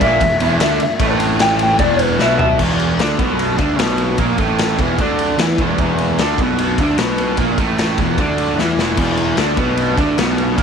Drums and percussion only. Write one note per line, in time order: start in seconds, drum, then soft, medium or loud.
0.01 kick loud
0.01 ride medium
0.21 kick loud
0.21 ride loud
0.40 ride medium
0.60 snare loud
0.60 ride loud
0.80 ride medium
1.00 kick loud
1.00 ride loud
1.20 ride medium
1.39 snare loud
1.39 ride loud
1.59 ride medium
1.79 kick loud
1.79 ride loud
1.99 ride medium
2.20 snare medium
2.39 floor tom loud
2.59 kick loud
2.59 crash loud
2.79 ride medium
2.99 snare loud
2.99 ride medium
3.19 kick loud
3.19 ride medium
3.39 ride loud
3.58 kick loud
3.58 ride medium
3.79 snare loud
3.79 ride loud
3.98 ride medium
4.18 kick loud
4.18 ride loud
4.38 kick loud
4.38 ride medium
4.58 snare loud
4.58 ride medium
4.79 kick loud
4.79 ride medium
4.98 kick loud
4.98 ride loud
5.19 ride medium
5.39 snare loud
5.39 ride loud
5.58 kick loud
5.58 ride medium
5.78 kick loud
5.78 ride medium
5.98 ride medium
6.18 snare loud
6.18 ride medium
6.38 kick loud
6.38 ride medium
6.58 ride loud
6.78 kick loud
6.78 ride medium
6.98 snare loud
6.98 ride loud
7.18 ride medium
7.37 kick loud
7.37 ride loud
7.58 kick loud
7.58 ride medium
7.78 snare loud
7.78 ride medium
7.98 kick loud
7.98 ride medium
8.18 kick loud
8.18 ride loud
8.38 ride medium
8.59 snare medium
8.79 snare medium
8.97 kick loud
8.97 crash loud
9.17 ride medium
9.37 snare loud
9.37 ride medium
9.57 kick loud
9.57 ride medium
9.77 ride loud
9.98 kick loud
9.98 ride medium
10.18 snare loud
10.18 ride loud
10.38 ride medium
10.58 kick loud
10.58 ride loud